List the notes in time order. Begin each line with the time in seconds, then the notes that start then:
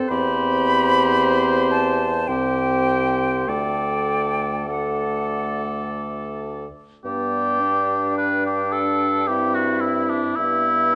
Already playing: A4
0.08 E2 C4 G4 C5 B5
1.71 A5
2.27 C2 C4 G4 C5 G5
3.46 D2 A3 A4 D5 G5
4.67 A3 A4 D5 F#5
7.05 G2 B3 D4 G4 D5
7.60 D4
8.16 B4 G5
8.46 G4
8.72 A4
9.27 C4 E4 G4 E5
9.55 F#4
9.81 E4
10.10 D4
10.36 G2 B3 E4 E5